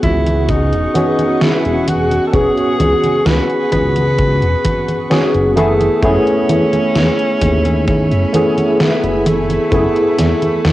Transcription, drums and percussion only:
0.03 kick, closed hi-hat, high conga
0.27 closed hi-hat, high conga
0.49 kick, closed hi-hat, high conga
0.73 closed hi-hat
0.95 closed hi-hat, high conga
1.19 closed hi-hat, high conga
1.41 snare, closed hi-hat, high conga
1.65 closed hi-hat
1.88 closed hi-hat, high conga
2.11 closed hi-hat, high conga
2.33 kick, closed hi-hat, high conga
2.57 closed hi-hat
2.80 closed hi-hat, high conga
3.04 closed hi-hat, high conga
3.26 snare, closed hi-hat, high conga
3.50 closed hi-hat
3.72 kick, closed hi-hat, high conga
3.96 closed hi-hat, high conga
4.18 kick, closed hi-hat, high conga
4.42 closed hi-hat
4.65 kick, closed hi-hat, high conga
4.88 closed hi-hat, high conga
5.11 snare, closed hi-hat, high conga
5.35 closed hi-hat
5.57 closed hi-hat, high conga
5.81 closed hi-hat, high conga
6.03 kick, closed hi-hat, high conga
6.27 closed hi-hat
6.49 closed hi-hat, high conga
6.73 closed hi-hat, high conga
6.95 snare, closed hi-hat, high conga
7.19 closed hi-hat
7.41 kick, closed hi-hat, high conga
7.65 closed hi-hat, high conga
7.88 kick, closed hi-hat, high conga
8.11 closed hi-hat
8.34 closed hi-hat, high conga
8.58 closed hi-hat, high conga
8.80 snare, closed hi-hat, high conga
9.04 closed hi-hat
9.26 closed hi-hat, high conga
9.50 closed hi-hat, high conga
9.72 kick, closed hi-hat, high conga
9.96 closed hi-hat
10.19 snare, closed hi-hat, high conga
10.42 closed hi-hat, high conga
10.65 snare, closed hi-hat, high conga

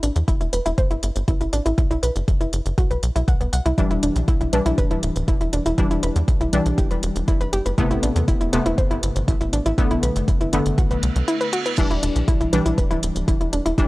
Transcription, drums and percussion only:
0.03 closed hi-hat
0.16 closed hi-hat
0.28 kick, closed hi-hat
0.41 closed hi-hat
0.53 closed hi-hat
0.66 closed hi-hat
0.78 kick, closed hi-hat
0.91 closed hi-hat
1.03 closed hi-hat
1.16 closed hi-hat
1.28 kick, closed hi-hat
1.41 closed hi-hat
1.53 closed hi-hat
1.66 closed hi-hat
1.78 kick, closed hi-hat
1.91 closed hi-hat
2.03 closed hi-hat
2.16 closed hi-hat
2.28 kick, closed hi-hat
2.41 closed hi-hat
2.53 closed hi-hat
2.66 closed hi-hat
2.78 kick, closed hi-hat
2.91 closed hi-hat
3.03 closed hi-hat
3.16 closed hi-hat
3.28 kick, closed hi-hat
3.41 closed hi-hat
3.53 closed hi-hat
3.66 closed hi-hat
3.78 kick, closed hi-hat
3.91 closed hi-hat
4.03 closed hi-hat
4.16 closed hi-hat
4.28 kick, closed hi-hat
4.41 closed hi-hat
4.53 closed hi-hat
4.66 closed hi-hat
4.78 kick, closed hi-hat
4.91 closed hi-hat
5.03 closed hi-hat
5.16 closed hi-hat
5.28 kick, closed hi-hat
5.41 closed hi-hat
5.53 closed hi-hat
5.66 closed hi-hat
5.78 kick, closed hi-hat
5.91 closed hi-hat
6.03 closed hi-hat
6.16 closed hi-hat
6.28 kick, closed hi-hat
6.41 closed hi-hat
6.53 closed hi-hat
6.66 closed hi-hat
6.78 kick, closed hi-hat
6.91 closed hi-hat
7.03 closed hi-hat
7.16 closed hi-hat
7.28 kick, closed hi-hat
7.41 closed hi-hat
7.53 closed hi-hat
7.66 closed hi-hat
7.78 kick, closed hi-hat
7.91 closed hi-hat
8.03 closed hi-hat
8.16 closed hi-hat
8.28 kick, closed hi-hat
8.41 closed hi-hat
8.53 closed hi-hat
8.66 closed hi-hat
8.78 kick, closed hi-hat
8.91 closed hi-hat
9.03 closed hi-hat
9.16 closed hi-hat
9.28 kick, closed hi-hat
9.41 closed hi-hat
9.53 closed hi-hat
9.66 closed hi-hat
9.78 kick, closed hi-hat
9.91 closed hi-hat
10.03 closed hi-hat
10.16 closed hi-hat
10.28 kick, closed hi-hat
10.41 closed hi-hat
10.53 closed hi-hat
10.66 closed hi-hat
10.78 kick, closed hi-hat
10.91 closed hi-hat
11.03 closed hi-hat
11.16 closed hi-hat
11.28 closed hi-hat
11.41 closed hi-hat
11.53 closed hi-hat
11.66 closed hi-hat
11.78 kick, closed hi-hat, crash
11.91 closed hi-hat
12.03 closed hi-hat
12.16 closed hi-hat
12.28 kick, closed hi-hat
12.41 closed hi-hat
12.53 closed hi-hat
12.66 closed hi-hat
12.78 kick, closed hi-hat
12.91 closed hi-hat
13.03 closed hi-hat
13.16 closed hi-hat
13.28 kick, closed hi-hat
13.41 closed hi-hat
13.53 closed hi-hat
13.66 closed hi-hat
13.78 kick, closed hi-hat

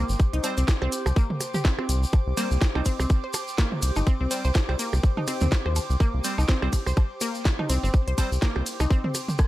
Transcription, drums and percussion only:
0.09 shaker
0.20 kick, shaker
0.33 closed hi-hat
0.44 closed hi-hat, percussion blips, shaker
0.57 closed hi-hat, shaker
0.68 kick, snare, shaker
0.82 percussion blips
0.92 closed hi-hat, shaker
1.06 percussion blips, shaker
1.16 kick, shaker
1.30 mid tom
1.40 closed hi-hat, percussion blips, shaker
1.54 mid tom, shaker
1.65 kick, snare, percussion blips, shaker
1.79 percussion blips
1.89 closed hi-hat, shaker
2.03 shaker
2.12 kick, percussion blips, shaker
2.37 closed hi-hat, ride, shaker
2.51 shaker
2.62 kick, snare, shaker
2.75 percussion blips
2.85 kick, closed hi-hat, ride, shaker
3.00 percussion blips, shaker
3.10 kick, shaker
3.33 closed hi-hat, ride, percussion blips, shaker
3.48 shaker
3.58 kick, snare, shaker
3.72 mid tom
3.82 closed hi-hat, ride, shaker
3.96 percussion blips, shaker
4.07 kick, shaker
4.31 closed hi-hat, ride, shaker
4.44 shaker
4.55 kick, snare, percussion blips, shaker
4.69 percussion blips
4.79 closed hi-hat, ride, shaker
4.93 percussion blips, shaker
5.03 kick, shaker
5.17 mid tom, percussion blips
5.27 closed hi-hat, ride, percussion blips, shaker
5.41 mid tom, shaker
5.51 kick, snare, shaker
5.66 percussion blips
5.76 closed hi-hat, ride, percussion blips, shaker
5.90 shaker
6.00 kick, shaker
6.24 closed hi-hat, ride, shaker
6.38 percussion blips, shaker
6.48 kick, snare, shaker
6.62 percussion blips
6.73 kick, closed hi-hat, ride, shaker
6.86 percussion blips, shaker
6.97 kick, percussion blips, shaker
7.21 closed hi-hat, ride, percussion blips, shaker
7.35 shaker
7.45 kick, snare, shaker
7.59 mid tom, percussion blips
7.70 closed hi-hat, ride, shaker
7.84 shaker
7.94 kick, shaker
8.08 closed hi-hat
8.18 kick, closed hi-hat, ride, percussion blips, shaker
8.32 shaker
8.42 kick, snare, shaker
8.56 percussion blips
8.66 closed hi-hat, ride, shaker
8.80 percussion blips, shaker
8.90 kick, shaker
9.04 mid tom
9.15 closed hi-hat, ride, percussion blips, shaker
9.28 mid tom, shaker
9.38 kick, cross-stick, percussion blips, shaker

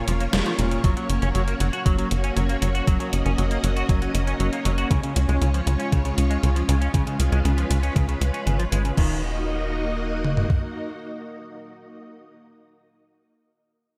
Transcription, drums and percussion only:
0.08 closed hi-hat
0.20 closed hi-hat
0.33 snare, closed hi-hat
0.46 closed hi-hat
0.59 closed hi-hat
0.71 closed hi-hat
0.84 kick, closed hi-hat
0.97 closed hi-hat
1.10 closed hi-hat
1.22 closed hi-hat
1.35 closed hi-hat
1.48 closed hi-hat
1.60 closed hi-hat
1.73 closed hi-hat
1.86 kick, closed hi-hat
1.99 closed hi-hat
2.11 closed hi-hat
2.24 closed hi-hat
2.37 closed hi-hat
2.49 closed hi-hat
2.62 closed hi-hat
2.75 closed hi-hat
2.87 kick, closed hi-hat
3.00 closed hi-hat
3.13 closed hi-hat
3.26 closed hi-hat
3.38 closed hi-hat
3.51 closed hi-hat
3.64 closed hi-hat
3.77 closed hi-hat
3.89 kick, closed hi-hat
4.02 closed hi-hat
4.15 closed hi-hat
4.27 closed hi-hat
4.40 closed hi-hat
4.53 closed hi-hat
4.65 closed hi-hat
4.78 closed hi-hat
4.91 kick, closed hi-hat
5.03 closed hi-hat
5.16 closed hi-hat
5.29 closed hi-hat
5.42 closed hi-hat
5.54 closed hi-hat
5.67 closed hi-hat
5.80 closed hi-hat
5.92 kick, closed hi-hat
6.05 closed hi-hat
6.18 closed hi-hat
6.31 closed hi-hat
6.43 closed hi-hat
6.56 closed hi-hat
6.69 closed hi-hat
6.82 closed hi-hat
6.94 kick, closed hi-hat
7.07 closed hi-hat
7.20 closed hi-hat
7.32 closed hi-hat
7.45 closed hi-hat
7.58 closed hi-hat
7.71 closed hi-hat
7.83 closed hi-hat
7.96 kick, closed hi-hat
8.09 closed hi-hat
8.21 closed hi-hat
8.34 closed hi-hat
8.47 closed hi-hat
8.60 closed hi-hat
8.72 closed hi-hat
8.85 closed hi-hat
8.97 kick, crash
10.24 mid tom
10.37 floor tom
10.50 kick

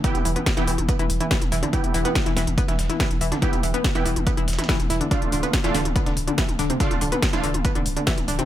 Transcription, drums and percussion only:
0.04 kick, closed hi-hat
0.15 closed hi-hat, mid tom
0.25 closed hi-hat, open hi-hat
0.36 closed hi-hat, mid tom
0.46 kick, snare, closed hi-hat, open hi-hat
0.57 snare, closed hi-hat, mid tom
0.67 closed hi-hat, open hi-hat
0.78 closed hi-hat, mid tom
0.89 kick, closed hi-hat
0.99 closed hi-hat, mid tom
1.10 closed hi-hat, open hi-hat
1.20 closed hi-hat, mid tom
1.31 kick, snare, closed hi-hat, open hi-hat
1.42 closed hi-hat, mid tom
1.52 snare, closed hi-hat, open hi-hat
1.63 closed hi-hat, mid tom
1.73 kick, closed hi-hat
1.84 closed hi-hat, mid tom
1.94 closed hi-hat, open hi-hat
2.05 closed hi-hat, mid tom
2.15 kick, snare, closed hi-hat
2.26 snare, closed hi-hat, mid tom
2.37 snare, closed hi-hat, open hi-hat
2.47 closed hi-hat, mid tom
2.58 kick, closed hi-hat
2.68 snare, closed hi-hat, mid tom
2.79 snare, closed hi-hat, open hi-hat
2.90 snare, closed hi-hat, mid tom
3.00 kick, snare, closed hi-hat
3.11 closed hi-hat, mid tom
3.21 closed hi-hat, open hi-hat
3.32 snare, closed hi-hat, mid tom
3.42 kick, closed hi-hat
3.53 closed hi-hat, mid tom
3.63 closed hi-hat, open hi-hat
3.74 closed hi-hat, mid tom
3.84 kick, snare, closed hi-hat, open hi-hat
3.95 snare, closed hi-hat, mid tom
4.06 closed hi-hat, open hi-hat
4.16 closed hi-hat, mid tom
4.27 kick, closed hi-hat
4.37 closed hi-hat, mid tom
4.48 snare, closed hi-hat, open hi-hat
4.53 snare, closed hi-hat
4.59 snare, closed hi-hat, mid tom
4.64 snare, closed hi-hat
4.69 kick, snare, closed hi-hat, open hi-hat
4.80 closed hi-hat, mid tom
4.90 snare, closed hi-hat, open hi-hat
5.01 closed hi-hat, mid tom
5.11 kick, closed hi-hat
5.22 closed hi-hat, mid tom
5.32 closed hi-hat, open hi-hat
5.43 closed hi-hat, mid tom
5.53 kick, snare, closed hi-hat
5.64 snare, closed hi-hat, mid tom
5.75 snare, closed hi-hat, open hi-hat
5.85 closed hi-hat, mid tom
5.96 kick, closed hi-hat
6.06 snare, closed hi-hat, mid tom
6.17 closed hi-hat, open hi-hat
6.28 closed hi-hat, mid tom
6.38 kick, snare, closed hi-hat
6.49 closed hi-hat, mid tom
6.59 snare, closed hi-hat, open hi-hat
6.70 closed hi-hat, mid tom
6.80 kick, closed hi-hat
6.91 closed hi-hat, mid tom
7.01 closed hi-hat, open hi-hat
7.12 closed hi-hat, mid tom
7.22 kick, snare, closed hi-hat, open hi-hat
7.33 snare, closed hi-hat, mid tom
7.44 closed hi-hat, open hi-hat
7.54 closed hi-hat, mid tom
7.65 kick, closed hi-hat
7.75 closed hi-hat, mid tom
7.86 closed hi-hat, open hi-hat
7.97 closed hi-hat, mid tom
8.07 kick, snare, closed hi-hat, open hi-hat
8.18 closed hi-hat, mid tom
8.28 snare, closed hi-hat, open hi-hat
8.39 closed hi-hat, mid tom

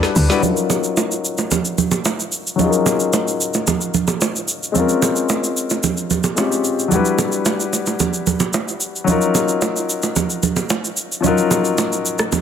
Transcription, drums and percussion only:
0.03 cross-stick, snare, shaker
0.16 open hi-hat, shaker
0.30 snare, shaker
0.43 low conga, shaker
0.57 shaker
0.70 low bongo, shaker
0.84 shaker
0.97 high bongo, shaker
1.12 shaker
1.25 shaker
1.38 high bongo, shaker
1.51 low bongo, low conga, shaker
1.65 shaker
1.78 low conga, shaker
1.91 low bongo, shaker
2.05 high bongo, shaker
2.20 shaker
2.32 shaker
2.47 shaker
2.59 low conga, shaker
2.73 shaker
2.86 low bongo, shaker
3.00 shaker
3.13 high bongo, shaker
3.28 shaker
3.41 shaker
3.54 high bongo, shaker
3.67 low bongo, low conga, shaker
3.81 shaker
3.94 low conga, shaker
4.08 low bongo, shaker
4.21 high bongo, shaker
4.36 shaker
4.48 shaker
4.63 shaker
4.75 low conga, shaker
4.89 shaker
5.02 low bongo, shaker
5.16 shaker
5.29 high bongo, shaker
5.44 shaker
5.57 shaker
5.70 high bongo, shaker
5.83 low bongo, low conga, shaker
5.97 shaker
6.11 low conga, shaker
6.24 low bongo, shaker
6.37 high bongo, shaker
6.52 shaker
6.64 shaker
6.79 shaker
6.92 low conga, shaker
7.05 shaker
7.18 low bongo, shaker
7.32 shaker
7.46 high bongo, shaker
7.60 shaker
7.73 high bongo, shaker
7.86 high bongo, shaker
8.00 low bongo, low conga, shaker
8.14 shaker
8.27 low conga, shaker
8.40 low bongo, shaker
8.54 high bongo, shaker
8.68 shaker
8.81 shaker
8.96 shaker
9.08 low conga, shaker
9.22 shaker
9.35 low bongo, shaker
9.48 shaker
9.62 high bongo, shaker
9.77 shaker
9.90 shaker
10.03 high bongo, shaker
10.16 low bongo, low conga, shaker
10.30 shaker
10.43 low conga, shaker
10.56 low bongo, shaker
10.70 high bongo, shaker
10.85 shaker
10.97 shaker
11.12 shaker
11.24 low conga, shaker
11.38 shaker
11.51 low bongo, shaker
11.65 shaker
11.78 high bongo, shaker
11.93 shaker
12.06 shaker
12.19 cross-stick, high bongo, shaker
12.32 low bongo, low conga, shaker

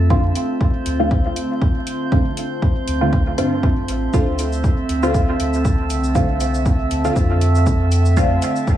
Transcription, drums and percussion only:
0.10 kick
0.35 closed hi-hat
0.61 kick
0.86 closed hi-hat
1.11 kick
1.36 closed hi-hat
1.62 kick
1.87 closed hi-hat
2.12 kick
2.37 closed hi-hat
2.62 kick
2.88 closed hi-hat
3.13 kick
3.38 closed hi-hat
3.63 kick
3.88 closed hi-hat
4.14 kick, shaker
4.39 closed hi-hat, shaker
4.53 shaker
4.64 kick, shaker
4.89 closed hi-hat
5.03 shaker
5.14 kick, shaker
5.40 closed hi-hat
5.53 shaker
5.65 kick, shaker
5.90 closed hi-hat, shaker
6.04 shaker
6.15 kick, shaker
6.41 closed hi-hat, shaker
6.54 shaker
6.66 kick, shaker
6.91 closed hi-hat, shaker
7.05 shaker
7.16 kick, shaker
7.41 closed hi-hat, shaker
7.55 shaker
7.67 kick, shaker
7.92 closed hi-hat, shaker
8.05 shaker
8.17 kick, shaker
8.42 closed hi-hat, shaker
8.56 shaker
8.67 kick, shaker

